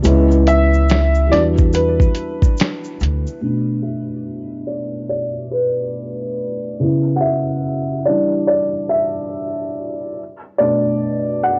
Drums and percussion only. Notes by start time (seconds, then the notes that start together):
0.04 closed hi-hat, shaker
0.31 shaker
0.47 closed hi-hat, shaker
0.74 shaker
0.89 finger snap, snare, closed hi-hat, shaker
1.15 shaker
1.33 snare, closed hi-hat
1.58 kick, shaker
1.73 closed hi-hat, shaker
2.00 kick, shaker
2.15 closed hi-hat, shaker
2.42 kick, shaker
2.58 snare, closed hi-hat, shaker
2.62 finger snap
2.84 shaker
3.00 closed hi-hat, shaker
3.27 shaker